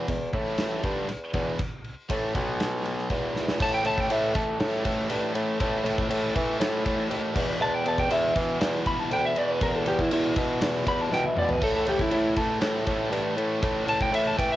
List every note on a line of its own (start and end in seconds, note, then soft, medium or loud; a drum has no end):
0.07 0.28 E2 medium
0.07 0.32 E2 medium
0.07 0.28 B2 medium
0.07 kick medium
0.07 ride medium
0.33 0.83 A2 medium
0.33 0.80 A2 loud
0.33 0.83 E3 medium
0.33 0.83 A3 medium
0.33 kick loud
0.33 ride medium
0.58 snare loud
0.58 ride medium
0.83 1.08 G2 medium
0.83 1.07 G2 medium
0.83 1.08 D3 medium
0.83 1.08 G3 loud
0.83 kick loud
0.83 ride medium
1.08 1.32 E2 soft
1.08 muted overdriven electric guitar stroke medium
1.08 muted distorted electric guitar stroke medium
1.08 ride medium
1.34 1.58 E2 medium
1.34 1.57 E2 loud
1.34 1.59 B2 medium
1.34 1.59 E3 medium
1.34 kick loud
1.34 ride medium
1.59 kick loud
1.59 ride medium
1.84 ride medium
2.10 2.33 A2 loud
2.10 2.34 A2 medium
2.10 2.35 E3 loud
2.10 2.35 A3 medium
2.10 kick loud
2.10 ride medium
2.35 3.06 B1 loud
2.35 3.09 B2 medium
2.35 3.10 F#3 loud
2.35 3.10 B3 medium
2.35 kick loud
2.35 ride medium
2.60 snare loud
2.60 ride medium
2.85 ride medium
2.98 snare soft
3.09 3.59 E2 loud
3.09 3.57 E2 medium
3.09 3.59 B2 loud
3.09 3.59 E3 loud
3.09 kick medium
3.09 ride medium
3.36 snare medium
3.48 snare medium
3.60 3.84 A2 loud
3.60 3.83 A2 medium
3.60 3.84 E3 medium
3.60 3.85 A3 loud
3.60 3.73 A5 loud
3.60 kick loud
3.60 crash loud
3.74 3.86 G5 medium
3.84 4.09 A2 medium
3.84 4.08 A2 loud
3.84 4.10 E3 loud
3.84 4.11 A3 loud
3.84 4.00 A5 medium
3.84 ride medium
3.98 4.12 G5 medium
3.98 kick medium
4.10 4.33 A2 medium
4.10 4.33 A2 loud
4.10 4.34 E3 loud
4.10 4.34 A3 loud
4.10 4.35 E5 loud
4.10 ride loud
4.34 4.57 A2 medium
4.34 4.59 E3 medium
4.34 4.58 A3 medium
4.34 4.58 A3 loud
4.34 kick loud
4.34 ride medium
4.58 4.83 A2 loud
4.58 4.84 E3 loud
4.58 4.84 A3 loud
4.58 snare loud
4.58 ride loud
4.84 5.09 A2 medium
4.84 5.08 A2 medium
4.84 5.10 E3 medium
4.84 5.10 A3 medium
4.84 kick medium
4.84 ride medium
5.10 5.33 G2 medium
5.10 5.34 A2 loud
5.10 5.36 E3 loud
5.10 5.35 A3 loud
5.10 ride loud
5.34 5.58 A2 loud
5.34 5.59 A2 medium
5.34 5.61 E3 medium
5.34 5.61 A3 medium
5.34 ride medium
5.60 5.84 A2 loud
5.60 5.83 A2 medium
5.60 5.85 E3 loud
5.60 5.85 A3 loud
5.60 kick loud
5.60 ride loud
5.83 6.07 A2 loud
5.83 6.08 A2 loud
5.83 6.10 E3 loud
5.83 6.10 A3 loud
5.83 ride medium
5.98 kick medium
6.10 6.34 A2 loud
6.10 6.33 A2 loud
6.10 6.36 E3 loud
6.10 6.35 A3 loud
6.10 ride loud
6.35 6.59 A2 medium
6.35 6.58 E3 loud
6.35 6.61 E3 medium
6.35 6.61 A3 medium
6.35 kick loud
6.35 ride medium
6.59 6.83 A2 loud
6.59 6.85 A2 loud
6.59 6.86 E3 loud
6.59 6.86 A3 loud
6.59 snare loud
6.59 ride loud
6.86 7.08 A2 loud
6.86 7.09 A2 medium
6.86 7.11 E3 loud
6.86 7.11 A3 loud
6.86 kick medium
6.86 ride medium
7.09 7.33 D#2 medium
7.09 7.34 A2 loud
7.09 7.37 E3 loud
7.09 7.35 A3 loud
7.09 ride loud
7.35 7.60 E2 medium
7.35 7.58 E2 medium
7.35 7.60 B2 loud
7.35 7.62 E3 loud
7.35 kick loud
7.35 crash loud
7.60 7.83 E2 medium
7.60 7.85 E2 medium
7.60 7.85 B2 medium
7.60 7.86 E3 loud
7.60 7.74 A5 loud
7.74 7.86 G5 medium
7.85 8.08 E2 loud
7.85 8.09 E2 loud
7.85 8.09 B2 loud
7.85 8.11 E3 loud
7.85 7.99 A5 medium
7.85 ride medium
7.98 8.11 G5 loud
7.98 kick medium
8.09 8.35 E2 loud
8.09 8.33 E2 loud
8.09 8.34 B2 loud
8.09 8.36 E3 loud
8.09 8.36 E5 loud
8.09 ride loud
8.35 8.59 E2 medium
8.35 8.60 B2 loud
8.35 8.59 E3 medium
8.35 8.61 E3 loud
8.35 kick medium
8.35 ride medium
8.60 8.84 E2 loud
8.60 8.83 E2 loud
8.60 8.85 B2 loud
8.60 8.86 E3 loud
8.60 snare loud
8.60 ride loud
8.85 9.09 E2 medium
8.85 9.11 B2 medium
8.85 9.12 E3 loud
8.85 9.00 B5 medium
8.85 kick medium
8.85 ride medium
9.00 9.11 A5 medium
9.11 9.34 D2 loud
9.11 9.35 E2 loud
9.11 9.36 B2 loud
9.11 9.37 E3 loud
9.11 9.24 G5 medium
9.11 ride medium
9.25 9.38 E5 loud
9.35 9.58 E2 medium
9.35 9.60 E2 medium
9.35 9.61 B2 medium
9.35 9.62 E3 medium
9.35 9.51 D5 loud
9.35 ride medium
9.51 9.62 B4 loud
9.61 9.84 E2 medium
9.61 9.85 B2 loud
9.61 9.87 E3 loud
9.61 9.75 A#4 loud
9.61 kick loud
9.61 ride loud
9.75 9.87 A4 medium
9.85 10.09 E2 medium
9.85 10.09 E2 loud
9.85 10.10 B2 loud
9.85 10.12 E3 medium
9.85 10.01 G4 loud
9.85 ride medium
9.99 10.12 E4 loud
9.99 kick medium
10.10 10.34 E2 loud
10.10 10.34 E2 medium
10.10 10.35 B2 loud
10.10 10.36 E3 medium
10.10 10.36 E4 loud
10.10 ride loud
10.35 10.58 E2 medium
10.35 10.59 B2 medium
10.35 10.61 E3 loud
10.35 kick loud
10.35 ride medium
10.59 10.83 E2 loud
10.59 10.84 E2 loud
10.59 10.84 B2 loud
10.59 10.86 E3 loud
10.59 snare loud
10.59 ride loud
10.85 11.09 E2 medium
10.85 11.09 E2 loud
10.85 11.10 B2 medium
10.85 11.11 E3 medium
10.85 11.01 B5 medium
10.85 kick medium
10.85 ride medium
11.01 11.12 A5 medium
11.10 11.34 E2 loud
11.10 11.35 B2 loud
11.10 11.34 B2 medium
11.10 11.36 E3 loud
11.10 11.26 G5 loud
11.10 snare medium
11.24 11.37 E5 loud
11.24 high tom medium
11.35 11.59 E2 medium
11.35 11.59 B2 medium
11.35 11.60 B2 medium
11.35 11.61 E3 medium
11.35 11.50 D5 loud
11.35 mid tom medium
11.49 11.62 B4 medium
11.49 floor tom medium
11.61 11.85 A2 medium
11.61 11.86 E3 loud
11.61 11.87 A3 medium
11.61 11.75 A4 loud
11.61 kick loud
11.61 crash medium
11.76 11.87 A4 medium
11.86 12.09 A2 medium
11.86 12.10 A2 medium
11.86 12.10 E3 loud
11.86 12.11 A3 loud
11.86 12.00 G4 medium
11.86 ride medium
11.99 12.12 E4 loud
11.99 kick medium
11.99 snare soft
12.10 12.35 A2 medium
12.10 12.34 A2 loud
12.10 12.36 E3 loud
12.10 12.37 A3 loud
12.10 12.37 E4 loud
12.10 ride loud
12.36 12.61 A2 medium
12.36 12.62 E3 medium
12.36 12.60 A3 medium
12.36 12.62 A3 loud
12.36 kick medium
12.36 ride medium
12.61 12.84 A2 medium
12.61 12.85 A2 loud
12.61 12.88 E3 loud
12.61 12.87 A3 loud
12.61 snare loud
12.61 ride loud
12.87 13.10 A2 medium
12.87 13.10 A2 loud
12.87 13.12 E3 medium
12.87 13.12 A3 loud
12.87 kick medium
12.87 ride medium
13.11 13.35 G2 medium
13.11 13.36 A2 loud
13.11 13.37 E3 loud
13.11 13.37 A3 loud
13.11 ride loud
13.36 13.60 A2 loud
13.36 13.60 A2 medium
13.36 13.62 E3 medium
13.36 13.62 A3 medium
13.36 ride medium
13.62 13.85 A2 loud
13.62 13.86 E3 loud
13.62 13.87 A3 loud
13.62 kick loud
13.62 ride loud
13.86 14.10 A2 medium
13.86 14.12 E3 loud
13.86 14.12 A3 loud
13.86 14.00 A5 medium
13.86 ride medium
14.01 14.13 G5 medium
14.01 kick medium
14.11 14.36 A2 loud
14.11 14.35 A2 loud
14.11 14.37 E3 loud
14.11 14.37 A3 loud
14.11 14.26 E5 loud
14.11 ride loud
14.27 14.38 A5 loud
14.37 14.56 A2 medium
14.37 14.56 E3 medium
14.37 14.56 A3 loud
14.37 14.50 G5 medium
14.37 kick medium
14.37 ride medium
14.52 14.56 E5 medium